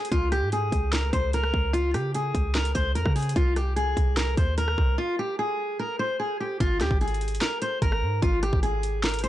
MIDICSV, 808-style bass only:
0, 0, Header, 1, 2, 480
1, 0, Start_track
1, 0, Key_signature, -4, "major"
1, 0, Tempo, 405405
1, 139, Time_signature, 4, 2, 24, 8
1, 10995, End_track
2, 0, Start_track
2, 0, Title_t, "808-style bass"
2, 0, Program_c, 0, 38
2, 138, Note_on_c, 0, 37, 106
2, 497, Note_on_c, 0, 44, 99
2, 515, Note_off_c, 0, 37, 0
2, 840, Note_off_c, 0, 44, 0
2, 857, Note_on_c, 0, 37, 106
2, 1318, Note_off_c, 0, 37, 0
2, 1338, Note_on_c, 0, 37, 105
2, 1799, Note_off_c, 0, 37, 0
2, 1819, Note_on_c, 0, 37, 109
2, 2298, Note_on_c, 0, 49, 100
2, 2316, Note_off_c, 0, 37, 0
2, 2754, Note_off_c, 0, 49, 0
2, 2777, Note_on_c, 0, 37, 107
2, 3239, Note_off_c, 0, 37, 0
2, 3258, Note_on_c, 0, 37, 115
2, 3498, Note_on_c, 0, 41, 98
2, 3515, Note_off_c, 0, 37, 0
2, 3612, Note_off_c, 0, 41, 0
2, 3618, Note_on_c, 0, 49, 100
2, 3964, Note_off_c, 0, 49, 0
2, 3978, Note_on_c, 0, 36, 115
2, 4669, Note_off_c, 0, 36, 0
2, 4697, Note_on_c, 0, 36, 108
2, 5158, Note_off_c, 0, 36, 0
2, 5178, Note_on_c, 0, 39, 104
2, 5639, Note_off_c, 0, 39, 0
2, 5659, Note_on_c, 0, 36, 105
2, 5889, Note_off_c, 0, 36, 0
2, 7818, Note_on_c, 0, 32, 113
2, 8058, Note_on_c, 0, 39, 100
2, 8076, Note_off_c, 0, 32, 0
2, 8172, Note_off_c, 0, 39, 0
2, 8178, Note_on_c, 0, 32, 99
2, 8754, Note_off_c, 0, 32, 0
2, 9258, Note_on_c, 0, 32, 107
2, 9498, Note_on_c, 0, 44, 107
2, 9515, Note_off_c, 0, 32, 0
2, 9726, Note_off_c, 0, 44, 0
2, 9739, Note_on_c, 0, 32, 118
2, 10084, Note_off_c, 0, 32, 0
2, 10098, Note_on_c, 0, 32, 101
2, 10995, Note_off_c, 0, 32, 0
2, 10995, End_track
0, 0, End_of_file